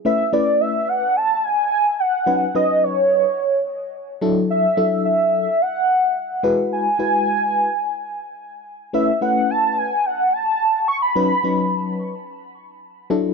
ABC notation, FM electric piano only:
X:1
M:4/4
L:1/16
Q:1/4=108
K:C#phr
V:1 name="FM electric piano"
[A,CEB]2 [A,CEB]4- [A,CEB] z8 z | [F,C^DB]2 [F,CDB]4- [F,CDB] z6 z [F,=DEA]2- | [F,DEA]2 [F,DEA]4- [F,DEA] z6 z [G,EFB]2- | [G,EFB]2 [G,EFB]4- [G,EFB] z8 z |
[A,CEB]2 [A,CEB]4- [A,CEB] z8 z | [F,C^DB]2 [F,CDB]4- [F,CDB] z6 z [F,=DEA]2 |]